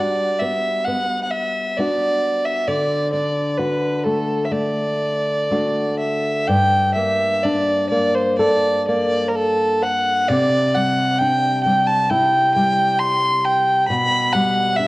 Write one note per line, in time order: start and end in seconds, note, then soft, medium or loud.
0.00 2.67 G3 medium
0.00 1.79 D4 soft
0.00 1.79 F#4 soft
0.00 0.42 D5 medium
0.40 0.87 B3 soft
0.40 0.87 E5 medium
0.85 1.77 B3 medium
0.85 1.23 F#5 medium
1.24 1.32 F#5 medium
1.31 1.79 E5 medium
1.77 2.77 B3 soft
1.77 3.13 D4 soft
1.77 3.59 F#4 soft
1.77 2.47 D5 medium
2.46 2.69 E5 medium
2.68 6.48 D3 medium
2.68 3.12 D5 medium
3.13 5.51 D4 soft
3.13 3.59 D5 medium
3.58 5.50 F#4 soft
3.58 3.98 B4 medium
3.98 4.05 B4 soft
4.04 4.51 A3 soft
4.04 4.47 A4 medium
4.45 4.53 E5 soft
4.52 5.50 A3 soft
4.52 5.99 D5 medium
5.51 6.96 A3 soft
5.51 7.44 D4 soft
5.51 6.59 F#4 soft
5.99 6.49 E5 medium
6.48 10.30 G2 medium
6.48 6.94 G5 medium
6.94 7.90 A#3 soft
6.94 7.45 E5 medium
7.43 10.95 D4 soft
7.43 7.89 D5 medium
7.89 8.87 A#3 soft
7.89 8.16 D5 medium
8.15 8.38 C5 medium
8.38 10.39 A4 medium
8.38 8.84 D5 medium
8.87 10.40 A#3 soft
8.87 9.30 D5 medium
9.29 9.37 A#4 soft
9.35 9.83 A4 medium
9.82 10.30 F#5 medium
10.28 13.90 C3 medium
10.28 10.76 D5 medium
10.75 11.66 G3 soft
10.75 11.20 F#5 medium
11.19 14.71 D4 soft
11.19 11.63 G5 medium
11.63 12.56 G3 soft
11.63 11.88 G5 medium
11.87 12.03 A5 medium
12.03 12.12 A5 medium
12.10 14.82 E4 medium
12.10 12.54 G5 medium
12.54 14.34 G3 soft
12.54 13.01 G5 medium
12.99 13.46 C6 medium
13.45 13.87 G5 medium
13.88 14.88 B2 medium
13.88 14.34 B5 medium
14.32 14.88 G3 soft
14.32 14.78 F#5 medium
14.76 14.88 D4 medium
14.76 14.88 E5 medium